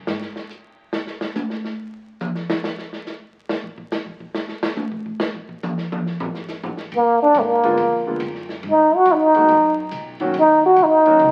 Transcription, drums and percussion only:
0.07 snare
0.21 snare
0.36 snare
0.50 hi-hat pedal
0.93 snare
1.07 snare
1.21 snare
1.35 hi-hat pedal, high tom
1.50 snare
1.65 snare
2.20 hi-hat pedal, mid tom
2.35 snare
2.50 snare
2.64 snare
2.78 snare
2.93 snare
3.06 snare, hi-hat pedal
3.49 snare
3.64 kick
3.78 kick
3.91 snare, hi-hat pedal
4.06 kick
4.20 kick
4.34 snare
4.49 snare
4.63 snare
4.76 hi-hat pedal, high tom
4.92 kick
5.06 kick
5.20 snare
5.35 kick
5.49 kick
5.63 hi-hat pedal, mid tom
5.78 snare
5.92 mid tom
6.06 snare
6.20 floor tom
6.35 snare
6.48 snare, hi-hat pedal
6.63 floor tom
6.77 snare
6.92 kick, ride
7.34 hi-hat pedal, ride
7.63 ride
7.77 ride
8.20 hi-hat pedal, ride
8.35 snare
8.49 snare
8.63 kick, ride
9.05 kick, hi-hat pedal, ride
9.34 ride
9.48 ride
9.91 hi-hat pedal, ride
10.20 ride
10.34 kick, ride
10.76 hi-hat pedal, ride
11.06 ride
11.19 kick, ride

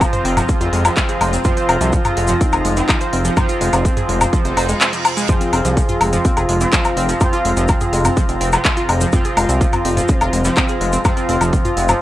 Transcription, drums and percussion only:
0.01 kick, closed hi-hat, low woodblock, shaker
0.13 closed hi-hat, mid tom, shaker
0.25 open hi-hat
0.37 closed hi-hat, mid tom, low woodblock, shaker
0.49 kick, closed hi-hat, shaker
0.61 closed hi-hat, shaker
0.73 open hi-hat
0.85 closed hi-hat, low woodblock, shaker
0.97 kick, clap, closed hi-hat, shaker
1.09 closed hi-hat, shaker
1.21 open hi-hat, low woodblock
1.33 closed hi-hat, shaker
1.44 kick, closed hi-hat, mid tom, shaker
1.57 closed hi-hat, shaker
1.69 open hi-hat, low woodblock
1.81 closed hi-hat, shaker
1.93 kick, closed hi-hat, shaker
2.05 closed hi-hat, mid tom, low woodblock, shaker
2.17 open hi-hat
2.27 closed hi-hat, mid tom, shaker
2.41 kick, closed hi-hat, shaker
2.52 closed hi-hat, low woodblock, shaker
2.65 open hi-hat
2.77 closed hi-hat, shaker
2.89 kick, clap, closed hi-hat, low woodblock, shaker
3.01 closed hi-hat, shaker
3.13 open hi-hat
3.25 closed hi-hat, shaker
3.37 kick, closed hi-hat, mid tom, low woodblock, shaker
3.49 closed hi-hat, shaker
3.61 open hi-hat
3.73 closed hi-hat, low woodblock, shaker
3.85 kick, closed hi-hat, shaker
3.97 closed hi-hat, mid tom, shaker
4.09 open hi-hat
4.21 closed hi-hat, mid tom, low woodblock, shaker
4.33 kick, closed hi-hat, shaker
4.45 closed hi-hat, shaker
4.57 open hi-hat, low woodblock
4.69 closed hi-hat, shaker
4.81 clap, closed hi-hat, shaker
4.93 closed hi-hat, shaker
5.05 open hi-hat, low woodblock
5.17 closed hi-hat, shaker
5.29 kick, closed hi-hat, mid tom, shaker
5.41 closed hi-hat, shaker
5.53 open hi-hat, low woodblock
5.65 closed hi-hat, shaker
5.77 kick, closed hi-hat, shaker
5.89 closed hi-hat, mid tom, shaker
6.01 open hi-hat, low woodblock
6.13 closed hi-hat, mid tom, shaker
6.25 kick, closed hi-hat, shaker
6.37 closed hi-hat, low woodblock, shaker
6.49 open hi-hat
6.61 closed hi-hat, shaker
6.72 kick, clap, closed hi-hat, shaker
6.84 closed hi-hat, low woodblock, shaker
6.97 open hi-hat
7.09 closed hi-hat, shaker
7.21 kick, closed hi-hat, mid tom, low woodblock, shaker
7.33 closed hi-hat, shaker
7.45 open hi-hat
7.57 closed hi-hat, shaker
7.68 kick, closed hi-hat, low woodblock, shaker
7.81 closed hi-hat, mid tom, shaker
7.93 open hi-hat
8.05 closed hi-hat, mid tom, low woodblock, shaker
8.17 kick, closed hi-hat, shaker
8.29 closed hi-hat, shaker
8.41 open hi-hat
8.52 closed hi-hat, low woodblock, shaker
8.65 kick, clap, closed hi-hat, shaker
8.77 closed hi-hat, shaker
8.89 open hi-hat, low woodblock
9.01 closed hi-hat, shaker
9.12 kick, closed hi-hat, mid tom, shaker
9.25 closed hi-hat, shaker
9.37 open hi-hat, low woodblock
9.49 closed hi-hat, shaker
9.61 kick, closed hi-hat, shaker
9.73 closed hi-hat, mid tom, low woodblock, shaker
9.85 open hi-hat
9.97 closed hi-hat, mid tom, shaker
10.08 kick, closed hi-hat, shaker
10.21 closed hi-hat, low woodblock, shaker
10.33 open hi-hat
10.44 closed hi-hat, shaker
10.57 kick, clap, closed hi-hat, low woodblock, shaker
10.68 closed hi-hat, shaker
10.81 open hi-hat
10.93 closed hi-hat, shaker
11.05 kick, closed hi-hat, mid tom, low woodblock, shaker
11.17 closed hi-hat, shaker
11.29 open hi-hat
11.41 closed hi-hat, low woodblock, shaker
11.53 kick, closed hi-hat, shaker
11.65 closed hi-hat, mid tom, shaker
11.77 open hi-hat
11.88 closed hi-hat, mid tom, low woodblock, shaker

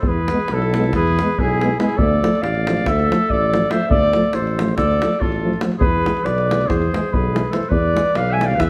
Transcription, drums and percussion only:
0.03 davul low
0.28 davul high
0.40 davul high
0.48 davul high
0.62 davul high
0.74 davul high
0.84 davul high
0.93 davul high, davul low
1.08 davul high
1.19 davul high
1.38 davul low
1.61 davul high
1.80 davul high
1.89 davul high
1.99 davul low
2.24 davul high
2.35 davul high
2.44 davul high
2.55 davul high
2.67 davul high
2.77 davul high
2.86 davul high, davul low
2.99 davul high
3.12 davul high
3.30 davul low
3.54 davul high
3.71 davul high
3.81 davul high
3.91 davul low
4.03 davul high
4.13 davul high
4.24 davul high
4.33 davul high
4.47 davul high
4.59 davul high
4.68 davul high
4.78 davul high, davul low
4.91 davul high
5.02 davul high
5.13 davul high
5.21 davul low
5.32 davul high
5.53 davul high
5.61 davul high
5.72 davul high
5.81 davul low
6.06 davul high
6.17 davul high
6.26 davul high
6.38 davul high
6.51 davul high
6.61 davul high
6.70 davul high, davul low
6.82 davul high
6.94 davul high
7.14 davul low
7.36 davul high
7.53 davul high
7.63 davul high
7.71 davul low
7.97 davul high
8.06 davul high
8.15 davul high
8.41 davul high
8.51 davul high
8.60 davul high, davul low

